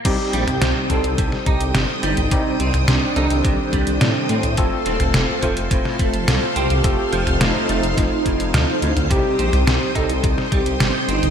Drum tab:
CC |x---------------|----------------|----------------|----------------|
HH |x-xxx-xxx-xxx-xx|x-xxx-xxx-xxx-xx|x-xxx-xxx-xxx-xx|x-xxx-xxx-xxx-xx|
SD |----o----o--o---|----o-------o---|----o----o--o---|----o---o---o---|
T2 |---o-----------o|---o-----------o|---o-----------o|---o-----------o|
BD |o-----o-o-o-----|o-------o-o-----|o-----o-o-o-----|o-------o-o-----|

CC |----------------|
HH |x-xxx-xxx-xxx-xx|
SD |----o----o--o---|
T2 |---o-----------o|
BD |o-----o-o-o-----|